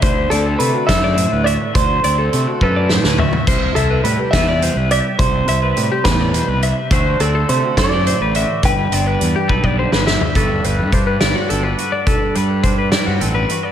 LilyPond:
<<
  \new Staff \with { instrumentName = "Clean electric guitar" } { \time 6/8 \key g \major \tempo 4. = 70 r8 a'8 b'8 e''4 d''8 | c''4. b'4 r8 | r8 a'8 b'8 e''4 d''8 | c''4. b'4 r8 |
r8 a'8 c''8 d''4. | g''2~ g''8 r8 | r2. | r2. | }
  \new Staff \with { instrumentName = "Clean electric guitar" } { \time 6/8 \key g \major c''8 d''16 a'8 fis'16 a'16 d''16 c''16 b'16 e''8 | c''8 d''16 a'8 fis'16 a'16 d''16 c''16 b'16 e''8 | c''8 e''16 b'8 g'16 b'16 d''16 c''16 b'16 e''8 | c''8 e''16 b'8 g'16 b'16 d''16 c''16 b'16 e''8 |
c''8 d''16 a'8 fis'16 a'16 d''16 c''16 b'16 e''8 | b'8 d''16 b'8 g'16 b'16 d''16 c''16 b'16 e''8 | a'8 b'8 c''16 b'16 d''16 fis'16 a'16 b'8 d''16 | a'8 b'8 c''16 b'16 d''16 fis'16 a'16 b'8 d''16 | }
  \new Staff \with { instrumentName = "Clean electric guitar" } { \time 6/8 \key g \major << { r8 c'4 a'16 c''8. fis'8 | r8 c'4 a'4 fis'8 | r8 e'4 a'16 b'8. g'8 | r8 e'2~ e'8 |
<a c' fis' c''>8 c'4 a'16 c''8. fis'8 | r8 c'16 d'8. a'16 b'8. e'16 g'16 | <g d' fis' b'>4 d'4 d'8 fis'8 | b'4 d'4 c'16 d'16 fis'8 | } \\ { d4 a4 a,4 | d4 a4 a,4 | c4 g4 g4 | c4 g8 a,8 b,8 c8 |
d4 a4 a,4 | g,4 g4 d4 | g,8 g4 g4. | g,8 g4 g4. | } >> }
  \new Staff \with { instrumentName = "Fingered electric bass" } { \clef bass \time 6/8 \key g \major d,8 d,8 c16 r16 fis,8. d,8 r16 | d,8 d,8 c16 r16 fis,8. d,8 r16 | c,8 c,8 a,16 r16 e,8. c,8 r16 | c,8 c,8 a,16 r16 e,8. c,8 r16 |
d,8 d,8 c16 r16 fis,8. a,,8 r16 | g,,8 g,,8 e,16 r16 b,,8. g,,8 r16 | g,,8 g,,16 g,16 g,8 g,,16 r16 g,,8 r8 | r8 g,4~ g,16 g,16 a,,8 r8 | }
  \new DrumStaff \with { instrumentName = "Drums" } \drummode { \time 6/8 <hh bd>8 hh8 hh8 <hh bd sn>8 hh8 hh8 | <hh bd>8 hh8 hh8 bd8 sn16 sn16 tomfh16 tomfh16 | <cymc hh bd>8 hh8 hh8 <hh bd sn>8 hh8 hh8 | <hh bd>8 hh8 hh8 <hh bd sn>8 hh8 hh8 |
<hh bd>8 hh8 hh8 <hh bd sn>8 hh8 hh8 | <hh bd>8 hh8 hh8 bd16 bd8 sn16 sn16 tomfh16 | <hh bd>8 hh8 <hh bd>8 <hh sn>8 hh8 hh8 | <hh bd>8 hh8 <hh bd>8 <hh sn>8 hh8 hh8 | }
>>